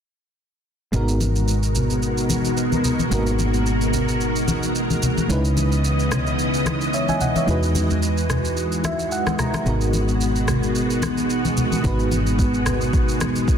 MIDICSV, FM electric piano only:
0, 0, Header, 1, 2, 480
1, 0, Start_track
1, 0, Tempo, 545455
1, 823, Time_signature, 4, 2, 24, 8
1, 11950, End_track
2, 0, Start_track
2, 0, Title_t, "FM electric piano"
2, 0, Program_c, 0, 5
2, 809, Note_on_c, 0, 56, 70
2, 818, Note_on_c, 0, 59, 68
2, 826, Note_on_c, 0, 63, 67
2, 835, Note_on_c, 0, 66, 65
2, 844, Note_on_c, 0, 70, 83
2, 969, Control_c, 0, 64, 127
2, 2701, Note_off_c, 0, 56, 0
2, 2705, Note_off_c, 0, 59, 0
2, 2709, Note_off_c, 0, 63, 0
2, 2714, Note_off_c, 0, 66, 0
2, 2718, Note_off_c, 0, 70, 0
2, 2730, Note_on_c, 0, 56, 73
2, 2738, Note_on_c, 0, 58, 53
2, 2747, Note_on_c, 0, 63, 68
2, 2756, Note_on_c, 0, 66, 66
2, 2764, Note_on_c, 0, 70, 80
2, 2795, Note_on_c, 0, 59, 69
2, 2804, Note_off_c, 0, 58, 0
2, 4621, Note_off_c, 0, 56, 0
2, 4630, Note_off_c, 0, 63, 0
2, 4634, Note_off_c, 0, 66, 0
2, 4638, Note_off_c, 0, 70, 0
2, 4650, Note_on_c, 0, 56, 71
2, 4654, Note_off_c, 0, 59, 0
2, 4659, Note_on_c, 0, 61, 67
2, 4667, Note_on_c, 0, 63, 70
2, 4674, Control_c, 0, 64, 0
2, 4676, Note_on_c, 0, 64, 68
2, 4685, Note_on_c, 0, 71, 83
2, 4852, Control_c, 0, 64, 127
2, 6107, Note_on_c, 0, 76, 63
2, 6112, Note_on_c, 0, 73, 53
2, 6230, Note_off_c, 0, 76, 0
2, 6233, Note_off_c, 0, 73, 0
2, 6239, Note_on_c, 0, 80, 67
2, 6244, Note_on_c, 0, 76, 58
2, 6340, Note_off_c, 0, 80, 0
2, 6342, Note_off_c, 0, 76, 0
2, 6347, Note_on_c, 0, 78, 70
2, 6352, Note_on_c, 0, 75, 58
2, 6470, Note_off_c, 0, 78, 0
2, 6473, Note_off_c, 0, 75, 0
2, 6479, Note_on_c, 0, 76, 60
2, 6484, Note_on_c, 0, 73, 53
2, 6541, Note_off_c, 0, 56, 0
2, 6546, Note_off_c, 0, 61, 0
2, 6550, Note_off_c, 0, 63, 0
2, 6554, Note_off_c, 0, 64, 0
2, 6558, Note_off_c, 0, 71, 0
2, 6569, Note_on_c, 0, 56, 74
2, 6578, Note_on_c, 0, 63, 66
2, 6587, Note_on_c, 0, 64, 66
2, 6594, Control_c, 0, 64, 0
2, 6595, Note_on_c, 0, 66, 65
2, 6604, Note_on_c, 0, 71, 79
2, 6705, Note_off_c, 0, 76, 0
2, 6708, Note_off_c, 0, 73, 0
2, 6733, Control_c, 0, 64, 127
2, 7787, Note_on_c, 0, 76, 73
2, 8008, Note_off_c, 0, 76, 0
2, 8027, Note_on_c, 0, 78, 73
2, 8248, Note_off_c, 0, 78, 0
2, 8267, Note_on_c, 0, 82, 69
2, 8461, Note_off_c, 0, 56, 0
2, 8465, Note_off_c, 0, 63, 0
2, 8470, Note_off_c, 0, 64, 0
2, 8474, Note_off_c, 0, 66, 0
2, 8478, Note_off_c, 0, 71, 0
2, 8488, Note_off_c, 0, 82, 0
2, 8489, Note_on_c, 0, 56, 71
2, 8498, Note_on_c, 0, 59, 68
2, 8506, Note_on_c, 0, 63, 69
2, 8512, Control_c, 0, 64, 0
2, 8515, Note_on_c, 0, 66, 65
2, 8523, Note_on_c, 0, 70, 78
2, 8691, Control_c, 0, 64, 127
2, 10381, Note_off_c, 0, 56, 0
2, 10385, Note_off_c, 0, 59, 0
2, 10389, Note_off_c, 0, 63, 0
2, 10394, Note_off_c, 0, 66, 0
2, 10398, Note_off_c, 0, 70, 0
2, 10409, Note_on_c, 0, 56, 76
2, 10418, Note_on_c, 0, 59, 69
2, 10426, Note_on_c, 0, 63, 69
2, 10435, Note_on_c, 0, 66, 70
2, 10444, Note_on_c, 0, 71, 83
2, 11845, Note_off_c, 0, 71, 0
2, 11950, Note_off_c, 0, 56, 0
2, 11950, Note_off_c, 0, 59, 0
2, 11950, Note_off_c, 0, 63, 0
2, 11950, Note_off_c, 0, 66, 0
2, 11950, End_track
0, 0, End_of_file